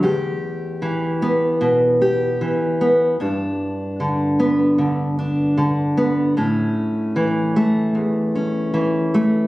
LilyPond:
\new Staff \with { instrumentName = "Steel-string acoustic guitar" } { \clef bass \time 4/4 \key e \dorian \tempo 4 = 76 << { g'4. b4 g'4 b8 | d'4. b4 d'4 b8 | cis'4. a4 cis'4 a8 | } \\ { e,4 e4 b,4 e4 | g,4 d4 d4 d4 | a,4 e4 e,4 e4 | } >> }